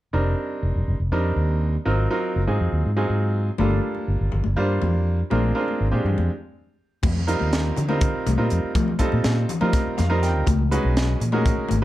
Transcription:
0.13 F1 G3 C4 D4 D#4 A#4
0.63 F1
0.76 F1
0.88 F1
1.00 F1
1.12 F2 G3 C4 D4 D#4 A#4
1.36 D#2
1.85 G#1 F#3 C4 D#4 F4 A#4
2.10 F#3 C4 D#4 F4 A#4
2.36 F#1
2.47 G#2 F#3 C4 D#4 F4 G#4
2.61 F2
2.72 D#2
2.86 G#2
2.96 F#3 C4 D#4 F4 G#4
3.10 G#2
3.58 G1 G3 A#3 D4 F4 A4, muted conga, high conga
3.70 low conga
3.95 high conga
4.08 G1
4.21 G1
4.32 G1, low conga
4.44 G1, muted conga, high conga
4.56 G2 G3 A#3 D4 F4 C5, low conga
4.82 F2, high conga, low conga
5.19 low conga
5.30 A#1 G#3 C4 D4 F4 A#4, muted conga, high conga, low conga
5.43 low conga
5.55 G#3 C4 D4 F4 A#4
5.68 high conga
5.81 G#1
5.91 A#2 G#3 C4 D4 F4 G4
6.05 G2, low conga
6.18 F2, muted conga
7.03 F2, kick, crash, muted conga, high conga
7.16 low conga
7.27 G3 C4 D#4 F4 A#4, closed hi-hat
7.39 D#2, high conga
7.53 snare, closed hi-hat
7.76 D3, closed hi-hat, low conga
7.88 G3 C4 D#4 F4 A#4, muted conga, high conga, low conga
8.01 kick, closed hi-hat
8.15 muted fretless electric bass stroke
8.26 C2, closed hi-hat, high conga, low conga
8.37 A#2 G3 C4 D#4 F4 A#4
8.50 F2, closed hi-hat
8.64 muted fretless electric bass stroke
8.75 F3, kick, closed hi-hat, muted conga, high conga
8.88 low conga
8.99 G3 C4 D#4 F4 A4, muted fretless electric bass stroke, kick, closed hi-hat
9.12 A#2, high conga
9.24 A#2, snare, closed hi-hat
9.49 closed hi-hat, low conga
9.61 F3 G3 C4 D#4 F4 A#4, muted conga, high conga, low conga
9.73 kick, snare, closed hi-hat
9.87 muted fretless electric bass stroke
9.97 F2 F5, snare, closed hi-hat, high conga, low conga
10.10 G3 C4 D#4 F4 A#4
10.23 G5, snare, closed hi-hat
10.37 D2
10.47 C#2, kick, closed hi-hat, muted conga, high conga
10.59 low conga
10.71 G#3 C#4 D#4 F#4 B4, closed hi-hat
10.83 B1, high conga
10.97 snare, closed hi-hat
11.20 A#2, closed hi-hat, low conga
11.32 G#3 C#4 D#4 F#4 A#4, muted conga, high conga, low conga
11.46 kick, closed hi-hat
11.58 muted fretless electric bass stroke
11.69 G#1, closed hi-hat, high conga, low conga

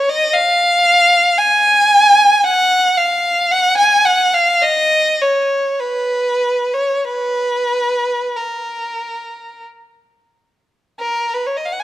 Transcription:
0.09 D#5
0.34 F5
1.38 G#5
2.44 F#5
2.98 F5
3.51 F#5
3.78 G#5
4.05 F#5
4.33 F5
4.62 D#5
5.22 C#5
5.80 B4
6.74 C#5
7.05 B4
8.36 A#4
11.00 A#4
11.34 B4
11.47 C#5
11.57 D#5
11.65 F5
11.72 F#5
11.79 G#5

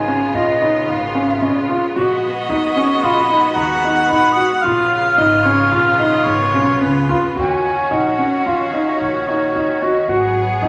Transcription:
Already playing: G#1 C#3 B3 F4 G#5
0.08 C#4
0.34 A#1 F4 D#5
0.62 D#4
0.88 G#1 F5
1.15 C#4
1.42 A#1 C#4
1.69 F4
1.96 A#1 G#3 B3 F#4 D#5
2.49 D#2 D#4
2.76 C#4 C#6
3.03 A#1 F4 B5
3.30 D#4
3.56 D#2 F#5 A#5
3.84 D#4
4.08 A#1 D#4 B5
4.32 D#6
4.36 F#4
4.61 C#3 B3 F4 F5 F6
4.65 A#1
5.18 G#1 D#4 D#5
5.44 C#4 C#5
5.71 A#1 F4 F5
5.98 D#4 D#5
6.26 G#1 C#5
6.54 B1 C#4
6.81 C#2 C#4 B4
7.09 D#2 F4
7.36 D#2 D#3 C#4 F#4
7.40 G#5
7.91 A#1 D#4 F#5
8.18 C#4
8.46 D#2 F4 F5
8.74 D#4
8.89 D#5
9.01 A#1 C#5
9.28 D#4
9.55 D#2 D#4
9.82 F#4 D#5
10.08 G#1 F#3 B3 F#4 G#4 F#5
10.62 D#2 D#4

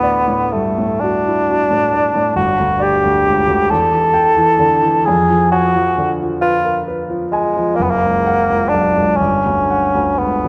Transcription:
Already playing: D2 A2 B3
0.03 D5
0.28 A2
0.52 G2 A3
0.78 A2
1.00 D4 F#4
1.28 E4
1.50 F#4
1.71 A2
1.93 D5
2.14 A2
2.36 G1 F#4
2.59 D2
2.79 G4 D5
3.04 D2
3.26 C#2
3.48 D2
3.70 E2 A4
3.93 E3
4.14 G5
4.37 E3
4.59 D3
4.83 E3
5.05 F2 G#4
5.30 F3
5.51 F#4 G#5
5.76 F3
5.98 D3
6.22 F3
6.41 F4 B4
6.65 A#4
6.88 B4
7.10 F3
7.32 G#3 G#5
7.57 F3
7.75 A#3
7.79 F#1 B3
7.90 A#3
8.03 C#2
8.26 F#5
8.50 C#2
8.69 D4
8.74 B1
8.97 C#2
9.16 C#4
9.21 G1
9.46 D2
9.70 F#5
9.95 D2
10.18 C#2 B3
10.44 D2

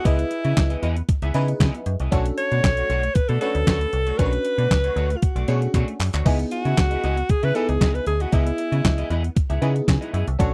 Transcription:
0.04 C#2 B3 E4 G#4 B4 D#5, kick, closed hi-hat
0.18 muted clean electric guitar stroke, closed hi-hat
0.30 muted clean electric guitar stroke, closed hi-hat
0.44 C#3 B3 E4 G#4 E5, closed hi-hat
0.56 C#2, muted clean electric guitar stroke, kick, snare, clap, closed hi-hat
0.70 B3 E4 G#4 D#5, closed hi-hat
0.82 E2 B3 E4 G#4 D#5, closed hi-hat
0.96 muted clean electric guitar stroke, closed hi-hat
1.09 muted clean electric guitar stroke, kick, closed hi-hat
1.22 C#2 B3 E4 G#4 E5, closed hi-hat
1.34 C#3 B3 D#4 E4 G#4 B4 D#5, closed hi-hat
1.48 muted clean electric guitar stroke, closed hi-hat
1.60 C#3 B3 E4 G#4 D#5, kick, snare, clap, closed hi-hat
1.74 muted clean electric guitar stroke, closed hi-hat
1.86 F#2, muted clean electric guitar stroke, closed hi-hat
2.00 C2 B3 E4 G#4 D#5, closed hi-hat
2.11 B1 A3 C#4 D4 F#4 A4 C#5, kick, closed hi-hat
2.26 muted clean electric guitar stroke, closed hi-hat
2.38 C#5, muted clean electric guitar stroke, closed hi-hat
2.52 B2 A3 D4 F#4 D5, closed hi-hat
2.64 B1, muted clean electric guitar stroke, kick, snare, clap, closed hi-hat
2.77 A3 D4 F#4 C#5, closed hi-hat
2.90 B1 A3 D4 F#4 C#5, closed hi-hat
3.03 muted clean electric guitar stroke, closed hi-hat
3.15 B2 B4, muted clean electric guitar stroke, kick, closed hi-hat
3.28 B2 A3 D4 F#4 A4 D5, closed hi-hat
3.41 A3 C#4 D4 F#4 A4 B4 C#5, closed hi-hat
3.55 D2, muted clean electric guitar stroke, closed hi-hat
3.67 D2 A3 D4 F#4 C#5, kick, snare, clap, closed hi-hat
3.81 muted clean electric guitar stroke, closed hi-hat
3.93 C2, muted clean electric guitar stroke, closed hi-hat
4.07 A3 D4 F#4 C#5, closed hi-hat
4.18 B1 A3 C#4 D4 F#4 A#4 B4 C#5, kick, closed hi-hat
4.25 B4
4.33 muted clean electric guitar stroke, closed hi-hat
4.45 muted clean electric guitar stroke, closed hi-hat
4.58 B2 A3 D4 F#4 D5, closed hi-hat
4.71 C#2, kick, snare, clap, closed hi-hat
4.84 A3 D4 F#4 C#5, closed hi-hat
4.96 D2 A3 D4 F#4 C#5, closed hi-hat
5.10 muted clean electric guitar stroke, closed hi-hat
5.16 F4
5.22 F#4, muted clean electric guitar stroke, kick, closed hi-hat
5.36 B1 A3 D4 F#4 D5, closed hi-hat
5.48 B2 A3 C#4 D4 F#4 G#4 C#5, closed hi-hat
5.62 muted clean electric guitar stroke, closed hi-hat
5.74 B2 A3 D4 F#4 C#5, kick, clap, closed hi-hat
5.88 muted clean electric guitar stroke, closed hi-hat
6.00 F#2, muted clean electric guitar stroke, clap, open hi-hat
6.13 D2 A3 D4 F#4 C#5, clap, closed hi-hat
6.25 C#2 B3 D#4 E4 G#4 D#5, kick, crash
6.39 muted clean electric guitar stroke, closed hi-hat
6.51 F#4, muted clean electric guitar stroke, closed hi-hat
6.65 C#3 B3 E4 G#4 E5, closed hi-hat
6.77 C#2, muted clean electric guitar stroke, kick, snare, clap, closed hi-hat
6.91 B3 E4 G#4 D#5, closed hi-hat
7.03 C#2 B3 E4 G#4 D#5, closed hi-hat
7.17 muted clean electric guitar stroke, closed hi-hat
7.29 C#3 G#4, muted clean electric guitar stroke, kick, closed hi-hat
7.43 C#3 B3 E4 G#4 B4 E5, closed hi-hat
7.55 B3 D#4 E4 G#4 A4 D#5, closed hi-hat
7.69 C#2 G#4, muted clean electric guitar stroke, closed hi-hat
7.81 C#2 B3 E4 G#4 D#5, kick, snare, clap, closed hi-hat
7.94 B4, muted clean electric guitar stroke, closed hi-hat
8.07 D2 G#4, muted clean electric guitar stroke, closed hi-hat
8.20 B3 E4 F#4 G#4 D#5, closed hi-hat
8.32 C#2 B3 E4 G#4 D#5, kick, closed hi-hat
8.46 muted clean electric guitar stroke, closed hi-hat
8.58 muted clean electric guitar stroke, closed hi-hat
8.72 C#3 B3 E4 G#4 E5, closed hi-hat
8.84 C#2, muted clean electric guitar stroke, kick, snare, clap, closed hi-hat
8.98 B3 E4 G#4 D#5, closed hi-hat
9.10 E2 B3 E4 G#4 D#5, closed hi-hat
9.24 muted clean electric guitar stroke, closed hi-hat
9.36 muted clean electric guitar stroke, kick, closed hi-hat
9.50 C#2 B3 E4 G#4 E5, closed hi-hat
9.61 C#3 B3 D#4 E4 G#4 D#5, closed hi-hat
9.75 muted clean electric guitar stroke, closed hi-hat
9.87 C#3 G#5, muted clean electric guitar stroke, kick, snare, clap, closed hi-hat
10.01 B3 E4 G#4 D#5, closed hi-hat
10.13 F#2 B3 E4 G#4 D#5 E5, closed hi-hat
10.27 C2, muted clean electric guitar stroke, closed hi-hat
10.39 B1 A3 C#4 D4 F#4 A4 C#5, kick, closed hi-hat

